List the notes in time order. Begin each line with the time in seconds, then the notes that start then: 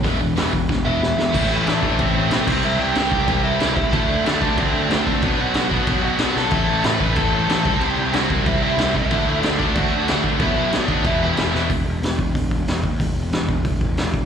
0.03 E1 E2 B2 E3 G#3 B3, kick, open hi-hat
0.20 E1 E2 B2 E3 G#3
0.36 E1 E2 B2 E3 G#3 B3, snare, open hi-hat
0.53 E1 E2 B2 E3 G#3, kick
0.69 E1 E2 B2 E3 G#3, kick, snare
0.85 E1 E2 B2 E3 G#3 B3 E4 E5
1.01 E1 E2 B2 E3 G#3, snare
1.17 E1 E2 B2 E3 G#3 E4 E5, snare
1.33 A1 A2 E3 A3 C4 E4, kick, crash
1.51 A1
1.66 A1 A2 E3 A3 D4 D5, snare, crash
1.82 A1 A2 E3 A3 C4 E4, kick
1.98 A1 A2 E3 A3 C4 C5, kick, crash
2.16 A1
2.30 B1 A2 E3 A3 C4 E4 C5, snare, crash
2.46 C2 C3 G3 C4 E4, kick, crash
2.63 C2 C3 G3 C4 E4 E5, crash
2.80 C2 G4 G5
2.94 C2 C3 G3 C4 E4, snare, crash
3.10 C2 C3 G3 C4, kick
3.27 C2 C3 G3 C4, kick, crash
3.43 C3 G3 C4 E4 E5
3.60 C2 C3 G3 C4, snare, crash
3.75 C2 C3 G3 C4 E4 E5, kick
3.92 D2 D3 F#3 A3 D4, kick, crash
4.10 D2
4.24 D2 D3 A3 D4 D5, snare, crash
4.41 D2 D3 F#3 A3 D4, kick
4.57 D2 D3 A3 C4 D4 C5, kick, crash
4.74 D2
4.90 D2 D3 F#3 A3 C4 D4 C5, snare, crash
5.06 D2 D3 A3 D4, kick
5.22 B1 B2 F#3 B3 D4 D5, kick, crash
5.39 B1 F#4 F#5
5.54 B1 B2 F#3 B3, snare, crash
5.71 B1 B2 F#3 B3 D4, kick
5.87 B1 B2 F#3 B3, kick, crash
6.05 F#4 F#5
6.18 B1 B2 F#3 B3 D4, snare, crash
6.35 B1 B2 F#3 B3 A4 A5, snare
6.51 A1 A2 E3 A3 C4 E4, kick, crash
6.69 A1
6.84 A1 A2 E3 A3 B4 B5, snare, crash
7.00 A1 A2 E3 A3 C4 E4, kick
7.15 A1 A2 E3 A3 A4 A5, kick, crash
7.32 A1
7.48 A1 A2 E3 A3 C4 E4, snare, crash
7.63 C2 C3 G3 C4, kick
7.68 E4
7.80 C2 C3 G3 C4 G4, crash
7.84 G5
7.98 C2
8.12 C2 C3 G3 C4 E4 F#4 F#5, snare, crash
8.30 C2 C3 G3 C4, kick
8.46 C2 C3 G3 C4 E4 E5, kick, crash
8.61 C3 G3 C4 E4 E5
8.78 C2 C3 G3 C4, snare, crash
8.95 C2 C3 G3 C4 E4 E5, kick
9.11 D2 D3 F#3 A3 D4, kick, crash
9.27 D2
9.43 D2 D3 A3 D4 D5, snare, crash
9.60 D2 D3 F#3 A3 D4, kick
9.75 D2 D3 A3 D4 F#4 F#5, kick, crash
9.92 D2
10.07 D2 D3 F#3 A3 D4, snare, crash
10.23 D2 D3 A3 D4, kick
10.39 B1 B2 F#3 B3 D4 E4 E5, kick, crash
10.57 B1
10.71 B1 B2 F#3 B3 D4 D5, snare, crash
10.87 D#2 B2 F#3 B3 D4, kick
11.03 E1 E2 B2 E3 G3 B3 E4 E5, kick, crash
11.37 E1 E2 B2 E3, snare, crash
11.52 E1 E2 B2 E3 G3 B3 E4, snare
11.70 E1, kick, open hi-hat
11.86 E1
12.02 E1, snare, open hi-hat
12.18 E1, kick
12.35 E1, kick, open hi-hat
12.51 E1, kick
12.67 E1, snare, open hi-hat
12.84 D#2, kick
13.00 E1, kick, open hi-hat
13.16 E1
13.32 E1, snare, open hi-hat
13.49 E1, kick
13.65 E1, kick, open hi-hat
13.81 E1, kick
13.97 E1, snare, open hi-hat
14.13 E1, kick